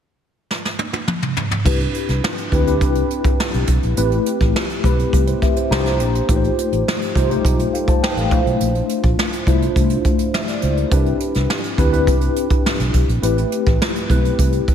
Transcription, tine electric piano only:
1.65 2.30 C4 medium
1.65 2.30 D4 medium
1.65 2.30 E4 medium
1.65 2.31 G4 medium
1.65 2.31 B4 medium
2.52 2.63 C4 medium
2.52 2.63 D4 medium
2.52 2.63 E4 medium
2.52 2.63 G4 medium
2.52 2.63 B4 medium
2.66 3.53 C4 medium
2.66 3.53 D4 medium
2.66 3.53 E4 medium
2.66 3.54 G4 medium
2.66 3.54 B4 medium
3.96 4.62 A3 medium
3.96 4.62 C4 medium
3.96 4.62 E4 medium
3.96 4.62 G4 medium
3.96 4.62 B4 medium
4.83 5.38 A3 medium
4.83 5.38 C4 medium
4.83 5.13 E4 medium
4.83 5.13 G4 medium
4.83 5.13 B4 medium
5.27 5.42 E4 medium
5.27 5.41 C5 medium
5.42 5.56 G4 medium
5.42 5.56 E5 medium
5.57 5.70 E4 soft
5.57 5.71 C5 medium
5.71 6.17 A#3 medium
5.71 6.17 D4 medium
5.71 6.17 E4 medium
5.71 6.17 G4 medium
5.71 6.18 C5 medium
5.71 6.25 A#5 medium
6.28 6.93 A3 medium
6.28 6.93 D#4 medium
6.28 6.94 F4 medium
6.28 6.94 G4 medium
6.28 6.36 B4 medium
6.36 6.97 C5 medium
7.15 7.26 A3 medium
7.15 7.26 D#4 medium
7.15 7.26 F4 medium
7.15 7.26 G4 medium
7.15 7.27 C5 medium
7.30 7.36 G3 medium
7.30 8.16 D#4 medium
7.30 8.17 F4 medium
7.30 8.17 G4 medium
7.30 7.74 C5 medium
7.36 8.19 A3 medium
7.73 7.87 A4 soft
7.73 7.87 F5 medium
7.88 8.02 C5 soft
7.88 8.02 A5 medium
8.03 8.17 B4 medium
8.03 8.16 G5 medium
8.17 8.45 A4 soft
8.17 8.44 F5 medium
8.31 9.24 A3 medium
8.31 9.24 D4 medium
8.31 9.24 E4 medium
8.31 9.24 F4 medium
8.31 9.24 C5 medium
9.47 10.01 A3 medium
9.47 10.01 D4 medium
9.47 10.01 E4 medium
9.47 10.01 F4 medium
9.47 10.02 C5 medium
10.34 10.48 G4 soft
10.34 10.48 E5 medium
10.48 10.62 F4 medium
10.48 10.62 D5 medium
10.62 10.77 E4 medium
10.62 10.76 C5 medium
10.78 10.90 D4 soft
10.78 11.05 A#4 medium
10.91 11.56 C4 medium
10.91 11.56 D4 medium
10.91 11.57 E4 medium
10.91 11.57 G4 medium
10.91 11.57 B4 medium
11.78 11.89 C4 medium
11.78 11.89 D4 medium
11.78 11.89 E4 medium
11.78 11.89 G4 medium
11.78 11.90 B4 medium
11.92 12.79 C4 medium
11.92 12.79 D4 medium
11.92 12.79 E4 medium
11.92 12.79 G4 medium
11.92 12.80 B4 medium
13.22 13.88 A3 medium
13.22 13.88 C4 medium
13.22 13.88 E4 medium
13.22 13.88 G4 medium
13.22 13.88 B4 medium
14.09 14.64 A3 medium
14.09 14.64 C4 medium
14.09 14.64 E4 medium
14.09 14.64 G4 medium
14.09 14.64 B4 medium

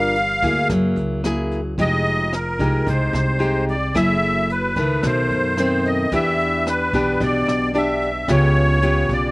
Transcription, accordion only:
0.00 0.68 F5 loud
1.80 2.35 D#5 loud
2.34 2.89 A#4 medium
2.89 3.65 C5 medium
3.70 3.96 D5 medium
3.96 4.51 E5 loud
4.51 5.06 B4 medium
5.06 5.88 C5 medium
5.86 6.13 D#5 medium
6.14 6.68 E5 loud
6.68 7.23 B4 loud
7.23 7.77 D5 loud
7.77 8.31 E5 medium
8.31 9.13 C#5 loud
9.13 9.31 D5 medium

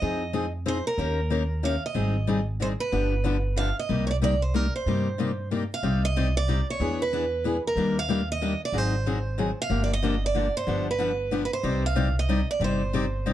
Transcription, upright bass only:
0.02 0.80 F2 medium
0.98 1.76 D#2 medium
1.95 2.73 G#1 medium
2.92 3.70 G1 medium
3.89 4.67 C2 medium
4.86 5.64 G2 medium
5.83 6.61 C2 medium
6.80 7.58 E2 medium
7.76 8.54 D#2 medium
8.72 9.51 G#1 medium
9.70 10.48 G1 medium
10.67 11.45 G1 medium
11.64 12.41 C2 medium
12.60 13.33 G1 medium

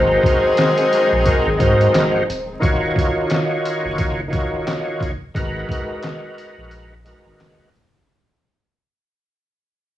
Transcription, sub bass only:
0.00 0.17 G#1 loud
1.12 1.23 A#1 medium
1.46 1.57 G#1 medium
1.60 1.87 G#2 loud
1.94 2.21 C#1 loud
2.28 2.55 D1 loud
2.62 2.89 D#1 loud
3.84 4.39 F#1 medium
4.53 4.64 D#1 medium
5.01 5.16 F#1 medium
5.35 5.62 G#1 loud
6.57 7.11 A#1 medium
7.25 7.37 G#1 medium
7.74 8.01 G1 medium

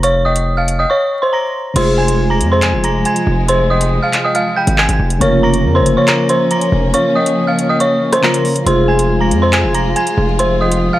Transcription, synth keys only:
1.74 5.16 C3 medium
1.74 5.17 G#3 medium
1.74 5.17 F4 medium
1.74 5.18 G#4 medium
5.19 8.18 C#3 medium
5.19 8.19 A#3 medium
5.19 8.20 F4 medium
5.19 8.20 A#4 medium
8.22 8.66 C#3 medium
8.22 8.66 A#3 soft
8.22 8.66 F4 soft
8.22 8.67 A#4 medium
8.64 10.99 C3 medium
8.64 10.99 G#3 medium
8.64 10.99 F4 medium
8.64 10.99 G#4 medium

